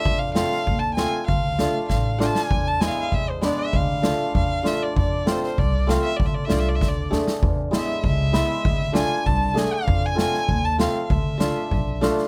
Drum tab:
SD |--oo--o-|--o-o-oo|--o---o-|--o---o-|
BD |o---o---|o---o---|o---o---|o---o---|

SD |--oo--o-|--o-o-oo|--o---o-|--o---o-|
BD |o---o---|o---o---|o---o---|o---o---|

SD |--oo--o-|--o---oo|
BD |o---o---|o---o---|